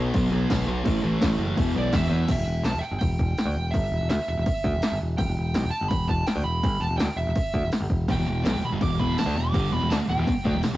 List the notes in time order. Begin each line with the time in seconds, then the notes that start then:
Already playing: B1 B2 B3
0.00 F#3
0.14 B1, kick, crash
0.31 B1 F#3 B3
0.49 B1 B2 F#3 B3, kick, snare, tambourine, crash
0.66 B1 F#3 B3
0.84 A1 A2 E3 A3, kick, crash
1.02 A1 A2 E3 A3
1.21 A1, kick, snare, tambourine, crash
1.38 F#1 A3
1.43 E3
1.55 E1 E2 B2 E3, kick, crash
1.74 B1 B2 E3
1.78 D5
1.92 E1 E2 B2 E3 E5, kick, snare, tambourine, crash
2.10 E2 B2 E3
2.28 E1 E5, kick, crash
2.36 E1
2.46 E1
2.63 B1 A5, snare, crash
2.74 E1
2.79 E5 G5, muted picked electric bass stroke
2.91 G1
2.99 E1 G5, kick, crash
3.19 E1, kick
3.38 snare, crash
3.45 D2
3.55 E1
3.71 G1 E5, kick, crash
3.92 E1
4.01 E1
4.09 D2 E5, snare, crash
4.19 muted picked electric bass stroke
4.28 E1 E5
4.37 E1
4.46 kick, crash
4.64 D2, kick
4.74 E1
4.82 muted picked electric bass stroke, snare, crash
4.92 G1
5.01 E1
5.18 E1 G5, kick, crash
5.28 E1
5.37 E1
5.54 B1, snare, crash
5.63 E1
5.71 A5, muted picked electric bass stroke
5.81 G1
5.88 E1 B5, kick, crash
6.08 E1 A5, kick
6.26 G5, snare, crash
6.36 D2
6.43 E1 B5
6.63 G1, kick, crash
6.80 E1 A5
6.89 E1
6.97 D2 G5, snare, crash
7.08 muted picked electric bass stroke
7.16 E1 E5
7.27 E1
7.35 kick, crash
7.54 D2, kick
7.63 E1
7.72 muted picked electric bass stroke, snare, crash
7.81 G1
7.90 E1, kick
8.08 E1 E2 B2 G5, kick, crash
8.18 E1 E2 B2
8.26 E1 E2 B2
8.43 B1 B2 F#3, snare, tambourine, crash
8.54 E1 E2 B2
8.64 B5, muted distorted electric guitar stroke, muted picked electric bass stroke
8.72 G1 G2 D3
8.81 E1 E2 B2 D6, kick, crash
8.98 E1 E2 B2 E3 B5, kick
9.17 A5, muted distorted electric guitar stroke, muted picked electric bass stroke, snare, tambourine, crash
9.26 D2 D3 A3
9.34 E1 E2 B2 D6
9.52 G1 G2 D3 G3, kick, crash
9.71 E1 E2 B2 B5
9.80 E1 E2 B2
9.89 D2 D3 A3 A5, snare, tambourine, crash
9.99 muted distorted electric guitar stroke, muted picked electric bass stroke
10.08 E1 E2 B2 G5
10.18 E1 E2 B2
10.27 muted distorted electric guitar stroke, muted picked electric bass stroke, kick, crash
10.44 D2 D3 A3, kick
10.55 E1 E2 B2
10.63 muted distorted electric guitar stroke, snare, tambourine, crash
10.73 G1 G2